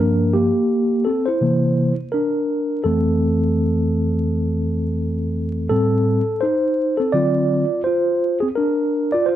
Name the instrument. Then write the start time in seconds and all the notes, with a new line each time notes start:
tine electric piano
Already playing: A#4
0.00 G2 F3 A#3 D4
0.33 A#3 G4
1.05 C4 A4
1.26 E4 C5
1.41 C3 E3 A#3
2.12 D4 A#4
2.84 F2 E3 A3 C4 A4
5.69 A2 G3 C4 A4
6.41 D#4 C5
6.97 C4 A4
7.12 D3 F#3 C4 F4 D5
7.84 F4 C5
8.40 C4 G#4
8.55 D4 A#4
9.12 F4 D5
9.26 F4 C5